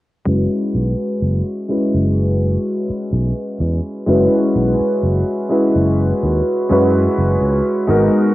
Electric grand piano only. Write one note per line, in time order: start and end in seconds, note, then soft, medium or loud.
0.25 1.64 G#3 medium
0.25 1.64 C#4 medium
0.25 1.64 E4 medium
0.25 1.65 F#4 medium
0.25 1.65 B4 medium
1.68 4.02 G#3 medium
1.68 4.02 C#4 medium
1.68 4.03 E4 medium
1.68 4.03 F#4 medium
1.68 4.03 B4 medium
4.06 5.45 G#3 medium
4.06 5.45 C#4 medium
4.06 5.45 E4 medium
4.06 5.46 F#4 medium
4.06 5.46 B4 loud
5.49 6.64 G#3 medium
5.49 6.64 C#4 medium
5.49 6.65 E4 medium
5.49 6.65 F#4 medium
5.49 6.65 B4 medium
6.69 7.83 G#3 medium
6.69 7.83 C#4 medium
6.69 7.83 E4 medium
6.69 7.84 F#4 medium
6.69 7.84 B4 loud
7.87 8.35 G#3 medium
7.87 8.35 B3 medium
7.87 8.35 D#4 medium
7.87 8.35 F#4 medium
7.87 8.35 A#4 loud